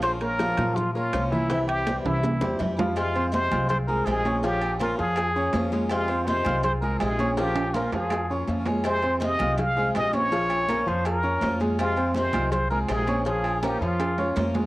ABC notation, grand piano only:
X:1
M:4/4
L:1/8
Q:1/4=163
K:Cphr
V:1 name="Grand piano"
[F,Ff] [B,Bd] [F,Ff] [F,Ff]2 [B,Bd]2 [=E,=E=e] | [=E,=E=e]2 [G,Gc] [E,Ee]2 [G,Gc]2 [F,Ff] | [K:Fm] z [Ccc']2 [Fff']2 [A,Aa]2 [Ddd'] | [F,Ff]2 [B,Bb] [F,Ff]2 [Ddd']2 [A,Aa]- |
[A,Aa] [Ccc']2 [Fff']2 [A,Aa]2 [Ddd'] | [F,Ff]2 [B,Bb] [F,Ff]2 [Ddd']2 [A,Aa]- | [A,Aa] [Ccc']2 [Fff']2 [A,Aa]2 [Ddd'] | [F,Ff]2 [B,Bb] [F,Ff]2 [Ddd']2 [A,Aa]- |
[A,Aa] [Ccc']2 [Fff']2 [A,Aa]2 [Ddd'] | [F,Ff]2 [B,Bb] [F,Ff]2 [Ddd']2 [A,Aa] |]